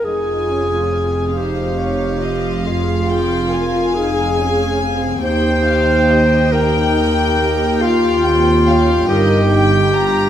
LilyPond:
<<
  \new Staff \with { instrumentName = "Violin section" } { \time 6/8 \key f \minor \tempo 4. = 47 aes''4. f''4.~ | f''2. | g''2.~ | g''2. | }
  \new Staff \with { instrumentName = "Violin section" } { \time 6/8 \key f \minor r4. c''8 des''8 ees''8 | f''8 g''8 aes''2 | g''8 f''8 ees''8 g''4. | f''8 g''8 f''8 ees''8 g''8 bes''8 | }
  \new Staff \with { instrumentName = "Clarinet" } { \time 6/8 \key f \minor aes'4. g'4. | f'4. aes'4 r8 | c''4. bes'4. | f'4. g'4. | }
  \new Staff \with { instrumentName = "Viola section" } { \time 6/8 \key f \minor << { f'4. ees'8 ees'8 f'8 | aes'8 aes'8 bes'8 aes'4. | g'4. g'4.~ | g'4. bes'8 ees'8 f'8 | } \\ { ees'8 des'8 c'8 c4. | f'4. ees'8 des'8 c'8 | ees'4. ees'4. | f'8 c'8 des'8 ees'4. | } >> }
  \new Staff \with { instrumentName = "Cello section" } { \clef bass \time 6/8 \key f \minor f,2.~ | f,2. | ees,2.~ | ees,4. g,4. | }
  \new Staff \with { instrumentName = "Double bass section" } { \clef bass \time 6/8 \key f \minor f,,2.~ | f,,2. | ees,2.~ | ees,4. g,,4. | }
>>